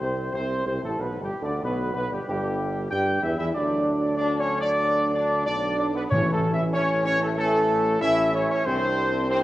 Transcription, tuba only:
0.01 0.31 C2 medium
0.34 0.64 C2 medium
0.66 0.81 C2 medium
0.83 0.98 A1 medium
0.99 1.19 B1 medium
1.21 1.30 G1 medium
1.41 1.61 D2 medium
1.63 1.93 B1 medium
1.95 2.10 B1 medium
2.12 2.19 G1 medium
2.28 2.88 G1 medium
2.92 3.21 G2 medium
3.23 3.38 E2 medium
3.40 3.55 E2 medium
3.55 5.49 D2 medium
5.47 6.10 B1 medium
6.11 7.98 A1 medium
8.02 8.49 A1 medium
8.66 9.44 C2 medium

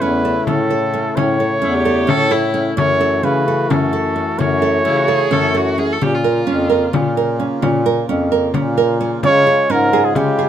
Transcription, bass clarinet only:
0.01 0.36 E2 medium
0.48 1.09 A2 medium
1.17 1.58 A2 medium
1.64 2.04 E2 medium
2.09 2.70 A2 medium
2.78 3.19 F#2 medium
3.24 3.65 C#3 medium
3.69 4.31 F#2 medium
4.39 4.80 F#2 medium
4.85 5.26 C#3 medium
5.33 5.93 F#2 medium
6.02 6.42 A#2 medium
6.48 6.88 F2 medium
6.93 7.46 A#2 medium
7.63 8.03 A#2 medium
8.09 8.49 F2 medium
8.55 9.16 A#2 medium
9.23 9.64 C#3 medium
9.69 10.10 G#2 medium
10.15 10.49 C#3 medium

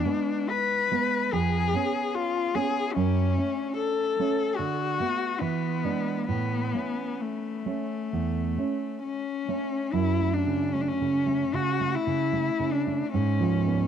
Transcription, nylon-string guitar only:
0.05 0.89 G#3 soft
0.05 0.89 B3 soft
0.91 1.28 G#3 soft
0.91 1.29 B3 soft
1.33 1.72 F2 soft
1.73 2.51 B3 soft
1.73 2.51 C#4 soft
2.55 2.91 B3 soft
2.55 2.91 C#4 soft
2.96 3.36 F#2 medium
3.38 4.16 A3 soft
3.38 4.16 C#4 soft
4.19 4.55 A3 soft
4.19 4.55 C#4 soft
4.59 4.98 D3 soft
5.00 5.38 A3 soft
5.00 5.38 B3 soft
5.41 5.83 E3 soft
5.84 6.24 G#3 soft
5.84 6.24 D4 soft
6.28 6.72 A2 soft
6.74 7.62 A3 soft
6.74 7.63 C#4 soft
7.66 8.08 A3 soft
7.66 8.08 C#4 soft
8.13 8.56 E2 soft
8.58 9.44 A3 soft
8.58 9.45 C#4 soft
9.48 9.88 A3 soft
9.48 9.89 C#4 soft
9.93 11.50 F#2 soft
10.20 10.64 A3 soft
10.47 10.90 C#3 soft
10.74 11.17 A3 soft
11.01 11.43 C#3 soft
11.27 11.70 A3 soft
11.54 11.96 C#3 soft
11.80 12.23 A3 soft
12.07 12.49 C#3 soft
12.33 12.75 A3 soft
12.60 13.02 C#3 soft
12.87 13.13 A3 soft
13.14 13.87 G#2 soft
13.40 13.82 F3 soft
13.66 13.87 B3 soft

